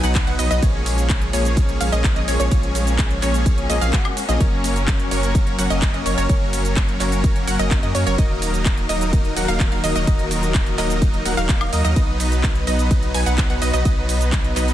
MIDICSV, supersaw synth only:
0, 0, Header, 1, 2, 480
1, 0, Start_track
1, 0, Key_signature, 6, "major"
1, 0, Tempo, 472441
1, 635, Time_signature, 4, 2, 24, 8
1, 14971, End_track
2, 0, Start_track
2, 0, Title_t, "Supersaw synth"
2, 0, Program_c, 0, 81
2, 35, Note_on_c, 0, 54, 93
2, 35, Note_on_c, 0, 59, 84
2, 35, Note_on_c, 0, 63, 85
2, 35, Note_on_c, 0, 71, 84
2, 35, Note_on_c, 0, 78, 97
2, 246, Note_off_c, 0, 54, 0
2, 246, Note_off_c, 0, 59, 0
2, 246, Note_off_c, 0, 63, 0
2, 246, Note_off_c, 0, 71, 0
2, 246, Note_off_c, 0, 78, 0
2, 275, Note_on_c, 0, 54, 74
2, 275, Note_on_c, 0, 59, 69
2, 275, Note_on_c, 0, 63, 71
2, 275, Note_on_c, 0, 71, 70
2, 275, Note_on_c, 0, 78, 82
2, 377, Note_off_c, 0, 54, 0
2, 377, Note_off_c, 0, 59, 0
2, 377, Note_off_c, 0, 63, 0
2, 377, Note_off_c, 0, 71, 0
2, 377, Note_off_c, 0, 78, 0
2, 394, Note_on_c, 0, 54, 86
2, 394, Note_on_c, 0, 59, 78
2, 394, Note_on_c, 0, 63, 82
2, 394, Note_on_c, 0, 71, 77
2, 394, Note_on_c, 0, 75, 92
2, 486, Note_off_c, 0, 54, 0
2, 486, Note_off_c, 0, 59, 0
2, 486, Note_off_c, 0, 63, 0
2, 486, Note_off_c, 0, 71, 0
2, 486, Note_off_c, 0, 75, 0
2, 514, Note_on_c, 0, 54, 95
2, 514, Note_on_c, 0, 59, 84
2, 514, Note_on_c, 0, 63, 85
2, 514, Note_on_c, 0, 71, 84
2, 514, Note_on_c, 0, 75, 102
2, 606, Note_off_c, 0, 54, 0
2, 606, Note_off_c, 0, 59, 0
2, 606, Note_off_c, 0, 63, 0
2, 606, Note_off_c, 0, 71, 0
2, 606, Note_off_c, 0, 75, 0
2, 634, Note_on_c, 0, 53, 72
2, 634, Note_on_c, 0, 58, 67
2, 634, Note_on_c, 0, 61, 65
2, 634, Note_on_c, 0, 68, 63
2, 634, Note_on_c, 0, 73, 76
2, 1326, Note_off_c, 0, 53, 0
2, 1326, Note_off_c, 0, 58, 0
2, 1326, Note_off_c, 0, 61, 0
2, 1326, Note_off_c, 0, 68, 0
2, 1326, Note_off_c, 0, 73, 0
2, 1354, Note_on_c, 0, 53, 85
2, 1354, Note_on_c, 0, 58, 79
2, 1354, Note_on_c, 0, 61, 78
2, 1354, Note_on_c, 0, 68, 79
2, 1354, Note_on_c, 0, 73, 98
2, 1806, Note_off_c, 0, 53, 0
2, 1806, Note_off_c, 0, 58, 0
2, 1806, Note_off_c, 0, 61, 0
2, 1806, Note_off_c, 0, 68, 0
2, 1806, Note_off_c, 0, 73, 0
2, 1834, Note_on_c, 0, 53, 87
2, 1834, Note_on_c, 0, 58, 78
2, 1834, Note_on_c, 0, 61, 81
2, 1834, Note_on_c, 0, 68, 81
2, 1834, Note_on_c, 0, 77, 95
2, 1926, Note_off_c, 0, 53, 0
2, 1926, Note_off_c, 0, 58, 0
2, 1926, Note_off_c, 0, 61, 0
2, 1926, Note_off_c, 0, 68, 0
2, 1926, Note_off_c, 0, 77, 0
2, 1954, Note_on_c, 0, 53, 94
2, 1954, Note_on_c, 0, 58, 86
2, 1954, Note_on_c, 0, 61, 88
2, 1954, Note_on_c, 0, 68, 85
2, 1954, Note_on_c, 0, 75, 100
2, 2166, Note_off_c, 0, 53, 0
2, 2166, Note_off_c, 0, 58, 0
2, 2166, Note_off_c, 0, 61, 0
2, 2166, Note_off_c, 0, 68, 0
2, 2166, Note_off_c, 0, 75, 0
2, 2194, Note_on_c, 0, 53, 77
2, 2194, Note_on_c, 0, 58, 70
2, 2194, Note_on_c, 0, 61, 70
2, 2194, Note_on_c, 0, 68, 69
2, 2194, Note_on_c, 0, 75, 83
2, 2297, Note_off_c, 0, 53, 0
2, 2297, Note_off_c, 0, 58, 0
2, 2297, Note_off_c, 0, 61, 0
2, 2297, Note_off_c, 0, 68, 0
2, 2297, Note_off_c, 0, 75, 0
2, 2314, Note_on_c, 0, 53, 84
2, 2314, Note_on_c, 0, 61, 77
2, 2314, Note_on_c, 0, 68, 81
2, 2314, Note_on_c, 0, 73, 96
2, 2315, Note_on_c, 0, 58, 78
2, 2406, Note_off_c, 0, 53, 0
2, 2406, Note_off_c, 0, 58, 0
2, 2406, Note_off_c, 0, 61, 0
2, 2406, Note_off_c, 0, 68, 0
2, 2406, Note_off_c, 0, 73, 0
2, 2434, Note_on_c, 0, 53, 92
2, 2434, Note_on_c, 0, 58, 87
2, 2434, Note_on_c, 0, 61, 89
2, 2434, Note_on_c, 0, 68, 86
2, 2434, Note_on_c, 0, 73, 106
2, 2526, Note_off_c, 0, 53, 0
2, 2526, Note_off_c, 0, 58, 0
2, 2526, Note_off_c, 0, 61, 0
2, 2526, Note_off_c, 0, 68, 0
2, 2526, Note_off_c, 0, 73, 0
2, 2555, Note_on_c, 0, 53, 72
2, 2555, Note_on_c, 0, 58, 64
2, 2555, Note_on_c, 0, 61, 63
2, 2555, Note_on_c, 0, 68, 64
2, 2555, Note_on_c, 0, 73, 77
2, 3246, Note_off_c, 0, 53, 0
2, 3246, Note_off_c, 0, 58, 0
2, 3246, Note_off_c, 0, 61, 0
2, 3246, Note_off_c, 0, 68, 0
2, 3246, Note_off_c, 0, 73, 0
2, 3275, Note_on_c, 0, 53, 87
2, 3275, Note_on_c, 0, 58, 78
2, 3275, Note_on_c, 0, 61, 78
2, 3275, Note_on_c, 0, 68, 79
2, 3275, Note_on_c, 0, 73, 95
2, 3726, Note_off_c, 0, 53, 0
2, 3726, Note_off_c, 0, 58, 0
2, 3726, Note_off_c, 0, 61, 0
2, 3726, Note_off_c, 0, 68, 0
2, 3726, Note_off_c, 0, 73, 0
2, 3755, Note_on_c, 0, 53, 104
2, 3755, Note_on_c, 0, 58, 96
2, 3755, Note_on_c, 0, 61, 94
2, 3755, Note_on_c, 0, 68, 96
2, 3755, Note_on_c, 0, 75, 116
2, 3846, Note_off_c, 0, 53, 0
2, 3846, Note_off_c, 0, 58, 0
2, 3846, Note_off_c, 0, 61, 0
2, 3846, Note_off_c, 0, 68, 0
2, 3846, Note_off_c, 0, 75, 0
2, 3875, Note_on_c, 0, 53, 102
2, 3875, Note_on_c, 0, 58, 91
2, 3875, Note_on_c, 0, 68, 94
2, 3875, Note_on_c, 0, 77, 116
2, 3876, Note_on_c, 0, 61, 93
2, 4008, Note_off_c, 0, 53, 0
2, 4008, Note_off_c, 0, 58, 0
2, 4008, Note_off_c, 0, 61, 0
2, 4008, Note_off_c, 0, 68, 0
2, 4008, Note_off_c, 0, 77, 0
2, 4355, Note_on_c, 0, 53, 82
2, 4355, Note_on_c, 0, 61, 78
2, 4355, Note_on_c, 0, 68, 77
2, 4355, Note_on_c, 0, 75, 92
2, 4356, Note_on_c, 0, 58, 77
2, 4457, Note_off_c, 0, 53, 0
2, 4457, Note_off_c, 0, 58, 0
2, 4457, Note_off_c, 0, 61, 0
2, 4457, Note_off_c, 0, 68, 0
2, 4457, Note_off_c, 0, 75, 0
2, 4475, Note_on_c, 0, 54, 72
2, 4475, Note_on_c, 0, 58, 65
2, 4475, Note_on_c, 0, 61, 63
2, 4475, Note_on_c, 0, 70, 65
2, 4475, Note_on_c, 0, 73, 78
2, 5166, Note_off_c, 0, 54, 0
2, 5166, Note_off_c, 0, 58, 0
2, 5166, Note_off_c, 0, 61, 0
2, 5166, Note_off_c, 0, 70, 0
2, 5166, Note_off_c, 0, 73, 0
2, 5195, Note_on_c, 0, 54, 87
2, 5195, Note_on_c, 0, 58, 77
2, 5195, Note_on_c, 0, 70, 78
2, 5196, Note_on_c, 0, 61, 81
2, 5196, Note_on_c, 0, 73, 93
2, 5647, Note_off_c, 0, 54, 0
2, 5647, Note_off_c, 0, 58, 0
2, 5647, Note_off_c, 0, 61, 0
2, 5647, Note_off_c, 0, 70, 0
2, 5647, Note_off_c, 0, 73, 0
2, 5675, Note_on_c, 0, 54, 88
2, 5675, Note_on_c, 0, 58, 80
2, 5675, Note_on_c, 0, 61, 77
2, 5675, Note_on_c, 0, 70, 76
2, 5676, Note_on_c, 0, 78, 94
2, 5766, Note_off_c, 0, 54, 0
2, 5766, Note_off_c, 0, 58, 0
2, 5767, Note_off_c, 0, 61, 0
2, 5767, Note_off_c, 0, 70, 0
2, 5767, Note_off_c, 0, 78, 0
2, 5795, Note_on_c, 0, 54, 91
2, 5795, Note_on_c, 0, 58, 83
2, 5795, Note_on_c, 0, 61, 84
2, 5795, Note_on_c, 0, 70, 81
2, 5795, Note_on_c, 0, 75, 105
2, 6006, Note_off_c, 0, 58, 0
2, 6006, Note_off_c, 0, 61, 0
2, 6006, Note_off_c, 0, 70, 0
2, 6006, Note_off_c, 0, 75, 0
2, 6007, Note_off_c, 0, 54, 0
2, 6034, Note_on_c, 0, 75, 82
2, 6035, Note_on_c, 0, 54, 75
2, 6035, Note_on_c, 0, 58, 69
2, 6035, Note_on_c, 0, 61, 68
2, 6035, Note_on_c, 0, 70, 70
2, 6137, Note_off_c, 0, 54, 0
2, 6137, Note_off_c, 0, 58, 0
2, 6137, Note_off_c, 0, 61, 0
2, 6137, Note_off_c, 0, 70, 0
2, 6137, Note_off_c, 0, 75, 0
2, 6155, Note_on_c, 0, 54, 84
2, 6155, Note_on_c, 0, 58, 77
2, 6155, Note_on_c, 0, 61, 82
2, 6155, Note_on_c, 0, 70, 78
2, 6155, Note_on_c, 0, 73, 94
2, 6246, Note_off_c, 0, 54, 0
2, 6246, Note_off_c, 0, 58, 0
2, 6246, Note_off_c, 0, 61, 0
2, 6246, Note_off_c, 0, 70, 0
2, 6246, Note_off_c, 0, 73, 0
2, 6275, Note_on_c, 0, 54, 92
2, 6275, Note_on_c, 0, 58, 88
2, 6275, Note_on_c, 0, 61, 86
2, 6275, Note_on_c, 0, 70, 86
2, 6275, Note_on_c, 0, 73, 105
2, 6366, Note_off_c, 0, 54, 0
2, 6366, Note_off_c, 0, 58, 0
2, 6366, Note_off_c, 0, 61, 0
2, 6366, Note_off_c, 0, 70, 0
2, 6366, Note_off_c, 0, 73, 0
2, 6394, Note_on_c, 0, 54, 71
2, 6394, Note_on_c, 0, 70, 67
2, 6395, Note_on_c, 0, 58, 67
2, 6395, Note_on_c, 0, 61, 63
2, 6395, Note_on_c, 0, 73, 78
2, 7086, Note_off_c, 0, 54, 0
2, 7086, Note_off_c, 0, 58, 0
2, 7086, Note_off_c, 0, 61, 0
2, 7086, Note_off_c, 0, 70, 0
2, 7086, Note_off_c, 0, 73, 0
2, 7114, Note_on_c, 0, 54, 87
2, 7114, Note_on_c, 0, 58, 78
2, 7115, Note_on_c, 0, 61, 76
2, 7115, Note_on_c, 0, 70, 81
2, 7115, Note_on_c, 0, 73, 94
2, 7566, Note_off_c, 0, 54, 0
2, 7566, Note_off_c, 0, 58, 0
2, 7566, Note_off_c, 0, 61, 0
2, 7566, Note_off_c, 0, 70, 0
2, 7566, Note_off_c, 0, 73, 0
2, 7594, Note_on_c, 0, 54, 85
2, 7594, Note_on_c, 0, 58, 77
2, 7594, Note_on_c, 0, 61, 82
2, 7594, Note_on_c, 0, 70, 76
2, 7594, Note_on_c, 0, 78, 97
2, 7686, Note_off_c, 0, 54, 0
2, 7686, Note_off_c, 0, 58, 0
2, 7686, Note_off_c, 0, 61, 0
2, 7686, Note_off_c, 0, 70, 0
2, 7686, Note_off_c, 0, 78, 0
2, 7714, Note_on_c, 0, 54, 93
2, 7714, Note_on_c, 0, 58, 84
2, 7714, Note_on_c, 0, 61, 82
2, 7714, Note_on_c, 0, 75, 99
2, 7715, Note_on_c, 0, 70, 86
2, 7926, Note_off_c, 0, 54, 0
2, 7926, Note_off_c, 0, 58, 0
2, 7926, Note_off_c, 0, 61, 0
2, 7926, Note_off_c, 0, 70, 0
2, 7926, Note_off_c, 0, 75, 0
2, 7954, Note_on_c, 0, 54, 74
2, 7954, Note_on_c, 0, 58, 71
2, 7954, Note_on_c, 0, 61, 69
2, 7954, Note_on_c, 0, 70, 69
2, 7954, Note_on_c, 0, 75, 83
2, 8057, Note_off_c, 0, 54, 0
2, 8057, Note_off_c, 0, 58, 0
2, 8057, Note_off_c, 0, 61, 0
2, 8057, Note_off_c, 0, 70, 0
2, 8057, Note_off_c, 0, 75, 0
2, 8074, Note_on_c, 0, 54, 86
2, 8074, Note_on_c, 0, 58, 82
2, 8074, Note_on_c, 0, 61, 78
2, 8074, Note_on_c, 0, 70, 81
2, 8074, Note_on_c, 0, 73, 95
2, 8166, Note_off_c, 0, 54, 0
2, 8166, Note_off_c, 0, 58, 0
2, 8166, Note_off_c, 0, 61, 0
2, 8166, Note_off_c, 0, 70, 0
2, 8166, Note_off_c, 0, 73, 0
2, 8194, Note_on_c, 0, 54, 94
2, 8194, Note_on_c, 0, 58, 84
2, 8194, Note_on_c, 0, 61, 84
2, 8194, Note_on_c, 0, 70, 87
2, 8194, Note_on_c, 0, 73, 106
2, 8286, Note_off_c, 0, 54, 0
2, 8286, Note_off_c, 0, 58, 0
2, 8286, Note_off_c, 0, 61, 0
2, 8286, Note_off_c, 0, 70, 0
2, 8286, Note_off_c, 0, 73, 0
2, 8314, Note_on_c, 0, 54, 72
2, 8314, Note_on_c, 0, 58, 65
2, 8314, Note_on_c, 0, 63, 64
2, 8314, Note_on_c, 0, 70, 68
2, 8314, Note_on_c, 0, 75, 77
2, 9006, Note_off_c, 0, 54, 0
2, 9006, Note_off_c, 0, 58, 0
2, 9006, Note_off_c, 0, 63, 0
2, 9006, Note_off_c, 0, 70, 0
2, 9006, Note_off_c, 0, 75, 0
2, 9035, Note_on_c, 0, 54, 84
2, 9035, Note_on_c, 0, 58, 78
2, 9035, Note_on_c, 0, 63, 81
2, 9035, Note_on_c, 0, 70, 79
2, 9035, Note_on_c, 0, 75, 95
2, 9486, Note_off_c, 0, 54, 0
2, 9486, Note_off_c, 0, 58, 0
2, 9486, Note_off_c, 0, 63, 0
2, 9486, Note_off_c, 0, 70, 0
2, 9486, Note_off_c, 0, 75, 0
2, 9514, Note_on_c, 0, 58, 82
2, 9514, Note_on_c, 0, 78, 96
2, 9515, Note_on_c, 0, 54, 84
2, 9515, Note_on_c, 0, 63, 78
2, 9515, Note_on_c, 0, 70, 79
2, 9606, Note_off_c, 0, 54, 0
2, 9606, Note_off_c, 0, 58, 0
2, 9606, Note_off_c, 0, 63, 0
2, 9606, Note_off_c, 0, 70, 0
2, 9606, Note_off_c, 0, 78, 0
2, 9635, Note_on_c, 0, 54, 93
2, 9635, Note_on_c, 0, 58, 86
2, 9635, Note_on_c, 0, 63, 85
2, 9635, Note_on_c, 0, 70, 84
2, 9635, Note_on_c, 0, 77, 100
2, 9846, Note_off_c, 0, 54, 0
2, 9846, Note_off_c, 0, 58, 0
2, 9846, Note_off_c, 0, 63, 0
2, 9846, Note_off_c, 0, 70, 0
2, 9846, Note_off_c, 0, 77, 0
2, 9875, Note_on_c, 0, 54, 74
2, 9875, Note_on_c, 0, 58, 72
2, 9875, Note_on_c, 0, 63, 68
2, 9875, Note_on_c, 0, 70, 70
2, 9875, Note_on_c, 0, 77, 84
2, 9977, Note_off_c, 0, 54, 0
2, 9977, Note_off_c, 0, 58, 0
2, 9977, Note_off_c, 0, 63, 0
2, 9977, Note_off_c, 0, 70, 0
2, 9977, Note_off_c, 0, 77, 0
2, 9995, Note_on_c, 0, 54, 88
2, 9995, Note_on_c, 0, 58, 76
2, 9995, Note_on_c, 0, 63, 76
2, 9995, Note_on_c, 0, 70, 77
2, 9995, Note_on_c, 0, 75, 97
2, 10086, Note_off_c, 0, 54, 0
2, 10086, Note_off_c, 0, 58, 0
2, 10086, Note_off_c, 0, 63, 0
2, 10086, Note_off_c, 0, 70, 0
2, 10086, Note_off_c, 0, 75, 0
2, 10115, Note_on_c, 0, 54, 93
2, 10115, Note_on_c, 0, 58, 85
2, 10115, Note_on_c, 0, 63, 87
2, 10115, Note_on_c, 0, 70, 85
2, 10115, Note_on_c, 0, 75, 102
2, 10206, Note_off_c, 0, 54, 0
2, 10206, Note_off_c, 0, 58, 0
2, 10206, Note_off_c, 0, 63, 0
2, 10206, Note_off_c, 0, 70, 0
2, 10206, Note_off_c, 0, 75, 0
2, 10235, Note_on_c, 0, 54, 70
2, 10235, Note_on_c, 0, 58, 67
2, 10235, Note_on_c, 0, 63, 66
2, 10235, Note_on_c, 0, 70, 65
2, 10235, Note_on_c, 0, 75, 80
2, 10926, Note_off_c, 0, 54, 0
2, 10926, Note_off_c, 0, 58, 0
2, 10926, Note_off_c, 0, 63, 0
2, 10926, Note_off_c, 0, 70, 0
2, 10926, Note_off_c, 0, 75, 0
2, 10954, Note_on_c, 0, 54, 88
2, 10954, Note_on_c, 0, 58, 79
2, 10954, Note_on_c, 0, 63, 77
2, 10954, Note_on_c, 0, 70, 76
2, 10954, Note_on_c, 0, 75, 96
2, 11406, Note_off_c, 0, 54, 0
2, 11406, Note_off_c, 0, 58, 0
2, 11406, Note_off_c, 0, 63, 0
2, 11406, Note_off_c, 0, 70, 0
2, 11406, Note_off_c, 0, 75, 0
2, 11435, Note_on_c, 0, 54, 87
2, 11435, Note_on_c, 0, 58, 78
2, 11435, Note_on_c, 0, 63, 79
2, 11435, Note_on_c, 0, 70, 79
2, 11435, Note_on_c, 0, 78, 95
2, 11526, Note_off_c, 0, 54, 0
2, 11526, Note_off_c, 0, 58, 0
2, 11526, Note_off_c, 0, 63, 0
2, 11526, Note_off_c, 0, 70, 0
2, 11526, Note_off_c, 0, 78, 0
2, 11555, Note_on_c, 0, 54, 90
2, 11555, Note_on_c, 0, 58, 85
2, 11555, Note_on_c, 0, 63, 83
2, 11555, Note_on_c, 0, 70, 84
2, 11555, Note_on_c, 0, 77, 102
2, 11766, Note_off_c, 0, 54, 0
2, 11766, Note_off_c, 0, 58, 0
2, 11766, Note_off_c, 0, 63, 0
2, 11766, Note_off_c, 0, 70, 0
2, 11766, Note_off_c, 0, 77, 0
2, 11794, Note_on_c, 0, 54, 73
2, 11794, Note_on_c, 0, 58, 69
2, 11794, Note_on_c, 0, 77, 86
2, 11795, Note_on_c, 0, 63, 66
2, 11795, Note_on_c, 0, 70, 71
2, 11897, Note_off_c, 0, 54, 0
2, 11897, Note_off_c, 0, 58, 0
2, 11897, Note_off_c, 0, 63, 0
2, 11897, Note_off_c, 0, 70, 0
2, 11897, Note_off_c, 0, 77, 0
2, 11915, Note_on_c, 0, 54, 87
2, 11915, Note_on_c, 0, 58, 80
2, 11915, Note_on_c, 0, 63, 76
2, 11915, Note_on_c, 0, 70, 77
2, 11915, Note_on_c, 0, 75, 95
2, 12006, Note_off_c, 0, 54, 0
2, 12006, Note_off_c, 0, 58, 0
2, 12006, Note_off_c, 0, 63, 0
2, 12006, Note_off_c, 0, 70, 0
2, 12006, Note_off_c, 0, 75, 0
2, 12035, Note_on_c, 0, 54, 93
2, 12035, Note_on_c, 0, 58, 84
2, 12035, Note_on_c, 0, 63, 88
2, 12035, Note_on_c, 0, 70, 85
2, 12035, Note_on_c, 0, 75, 105
2, 12126, Note_off_c, 0, 54, 0
2, 12126, Note_off_c, 0, 58, 0
2, 12126, Note_off_c, 0, 63, 0
2, 12126, Note_off_c, 0, 70, 0
2, 12126, Note_off_c, 0, 75, 0
2, 12155, Note_on_c, 0, 54, 69
2, 12155, Note_on_c, 0, 59, 67
2, 12155, Note_on_c, 0, 63, 65
2, 12155, Note_on_c, 0, 71, 65
2, 12155, Note_on_c, 0, 75, 81
2, 12846, Note_off_c, 0, 54, 0
2, 12846, Note_off_c, 0, 59, 0
2, 12846, Note_off_c, 0, 63, 0
2, 12846, Note_off_c, 0, 71, 0
2, 12846, Note_off_c, 0, 75, 0
2, 12875, Note_on_c, 0, 54, 89
2, 12875, Note_on_c, 0, 59, 77
2, 12875, Note_on_c, 0, 63, 79
2, 12875, Note_on_c, 0, 71, 75
2, 12875, Note_on_c, 0, 75, 95
2, 13326, Note_off_c, 0, 54, 0
2, 13326, Note_off_c, 0, 59, 0
2, 13326, Note_off_c, 0, 63, 0
2, 13326, Note_off_c, 0, 71, 0
2, 13326, Note_off_c, 0, 75, 0
2, 13354, Note_on_c, 0, 59, 78
2, 13354, Note_on_c, 0, 71, 79
2, 13355, Note_on_c, 0, 54, 90
2, 13355, Note_on_c, 0, 63, 80
2, 13355, Note_on_c, 0, 80, 99
2, 13446, Note_off_c, 0, 54, 0
2, 13446, Note_off_c, 0, 59, 0
2, 13446, Note_off_c, 0, 63, 0
2, 13446, Note_off_c, 0, 71, 0
2, 13446, Note_off_c, 0, 80, 0
2, 13474, Note_on_c, 0, 54, 89
2, 13474, Note_on_c, 0, 63, 86
2, 13474, Note_on_c, 0, 71, 84
2, 13475, Note_on_c, 0, 59, 85
2, 13475, Note_on_c, 0, 78, 105
2, 13686, Note_off_c, 0, 54, 0
2, 13686, Note_off_c, 0, 59, 0
2, 13686, Note_off_c, 0, 63, 0
2, 13686, Note_off_c, 0, 71, 0
2, 13686, Note_off_c, 0, 78, 0
2, 13715, Note_on_c, 0, 54, 76
2, 13715, Note_on_c, 0, 59, 69
2, 13715, Note_on_c, 0, 63, 68
2, 13715, Note_on_c, 0, 71, 70
2, 13715, Note_on_c, 0, 78, 85
2, 13817, Note_off_c, 0, 54, 0
2, 13817, Note_off_c, 0, 59, 0
2, 13817, Note_off_c, 0, 63, 0
2, 13817, Note_off_c, 0, 71, 0
2, 13817, Note_off_c, 0, 78, 0
2, 13835, Note_on_c, 0, 54, 84
2, 13835, Note_on_c, 0, 59, 81
2, 13835, Note_on_c, 0, 63, 77
2, 13835, Note_on_c, 0, 71, 78
2, 13835, Note_on_c, 0, 75, 96
2, 13926, Note_off_c, 0, 54, 0
2, 13926, Note_off_c, 0, 59, 0
2, 13926, Note_off_c, 0, 63, 0
2, 13926, Note_off_c, 0, 71, 0
2, 13926, Note_off_c, 0, 75, 0
2, 13955, Note_on_c, 0, 54, 96
2, 13955, Note_on_c, 0, 59, 87
2, 13955, Note_on_c, 0, 63, 85
2, 13955, Note_on_c, 0, 71, 87
2, 13955, Note_on_c, 0, 75, 104
2, 14046, Note_off_c, 0, 54, 0
2, 14046, Note_off_c, 0, 59, 0
2, 14046, Note_off_c, 0, 63, 0
2, 14046, Note_off_c, 0, 71, 0
2, 14046, Note_off_c, 0, 75, 0
2, 14075, Note_on_c, 0, 54, 71
2, 14075, Note_on_c, 0, 59, 67
2, 14075, Note_on_c, 0, 63, 66
2, 14075, Note_on_c, 0, 71, 65
2, 14075, Note_on_c, 0, 75, 80
2, 14766, Note_off_c, 0, 54, 0
2, 14766, Note_off_c, 0, 59, 0
2, 14766, Note_off_c, 0, 63, 0
2, 14766, Note_off_c, 0, 71, 0
2, 14766, Note_off_c, 0, 75, 0
2, 14795, Note_on_c, 0, 54, 88
2, 14795, Note_on_c, 0, 59, 77
2, 14795, Note_on_c, 0, 63, 77
2, 14795, Note_on_c, 0, 71, 78
2, 14795, Note_on_c, 0, 75, 94
2, 14971, Note_off_c, 0, 54, 0
2, 14971, Note_off_c, 0, 59, 0
2, 14971, Note_off_c, 0, 63, 0
2, 14971, Note_off_c, 0, 71, 0
2, 14971, Note_off_c, 0, 75, 0
2, 14971, End_track
0, 0, End_of_file